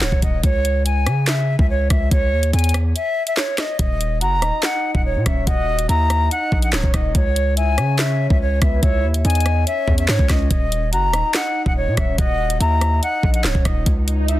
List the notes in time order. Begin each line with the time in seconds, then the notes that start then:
0.01 C#1 C#5, snare, clap
0.12 D#1, kick
0.22 D#1 D#5, kick, closed hi-hat
0.43 C#2 C#5, kick, closed hi-hat
0.65 closed hi-hat
0.85 G#5, closed hi-hat
1.06 C#3, cross-stick, closed hi-hat
1.27 E5, snare, clap, closed hi-hat
1.59 C#2 E5, kick
1.69 C#5
1.90 C#2 E5, kick, cross-stick, closed hi-hat
2.11 C#2 C#5, kick, closed hi-hat
2.32 D#2
2.43 closed hi-hat
2.53 E2 G#5, closed hi-hat
2.59 closed hi-hat
2.64 closed hi-hat
2.69 closed hi-hat
2.74 cross-stick, closed hi-hat
2.95 E5, closed hi-hat
3.27 E5, closed hi-hat
3.37 C#5, snare, clap
3.58 D#5, cross-stick, snare, closed hi-hat
3.79 D#1 D#5, kick, closed hi-hat
4.01 closed hi-hat
4.21 F#1 F#5 A#5, closed hi-hat
4.37 D#1
4.42 D#5, cross-stick, closed hi-hat
4.63 F#5, snare, clap, closed hi-hat
4.95 D#1 F#5, kick
5.05 C#5
5.16 A#2
5.26 D#1 C#5 E5, kick, cross-stick, closed hi-hat
5.47 D#1 D#5 F#5, kick, closed hi-hat
5.79 closed hi-hat
5.89 D#2 E5 A#5, closed hi-hat
6.10 cross-stick, closed hi-hat
6.31 D#5 F#5, closed hi-hat
6.52 A#1, kick
6.62 F#5, closed hi-hat
6.73 C#1 C#5, snare, clap
6.83 D#1, kick
6.94 D#1 D#5, kick, cross-stick, closed hi-hat
7.15 C#2 C#5, kick, closed hi-hat
7.36 closed hi-hat
7.57 E5 G#5, closed hi-hat
7.78 C#3 C#5, cross-stick, closed hi-hat
7.99 E5, snare, clap, closed hi-hat
8.30 C#2 E5, kick
8.41 C#5
8.62 C#2 B4 E5, kick, cross-stick, closed hi-hat
8.82 C#2 C#5 E5, kick, closed hi-hat
9.04 D#2
9.14 closed hi-hat
9.25 E2 D#5 G#5, closed hi-hat
9.30 closed hi-hat
9.35 closed hi-hat
9.40 closed hi-hat
9.46 cross-stick, closed hi-hat
9.67 C#5 E5, closed hi-hat
9.88 E2, kick
9.98 E5, closed hi-hat
10.08 G#2 C#5, snare, clap
10.19 C#2, kick
10.29 C#2 C#5 D#5, kick, cross-stick, snare, closed hi-hat
10.50 D#1 D#5, kick, closed hi-hat
10.72 closed hi-hat
10.92 F#1 F#5 A#5, closed hi-hat
11.08 D#1
11.13 D#5, cross-stick, closed hi-hat
11.34 F#5, snare, clap, closed hi-hat
11.66 D#1 F#5, kick
11.76 C#5
11.87 A#2
11.97 D#1 C#5 E5, kick, cross-stick, closed hi-hat
12.18 D#1 D#5 F#5, kick, closed hi-hat
12.50 closed hi-hat
12.60 D#2 E5 A#5, closed hi-hat
12.81 cross-stick, closed hi-hat
13.02 D#5 F#5, closed hi-hat
13.23 A#1, kick
13.34 F#5, closed hi-hat
13.44 C#1 C#5, snare, clap
13.55 D#1, kick
13.65 D#1 D#5, kick, cross-stick, closed hi-hat
13.86 C#2, kick, closed hi-hat, swell
14.08 closed hi-hat
14.28 E5, closed hi-hat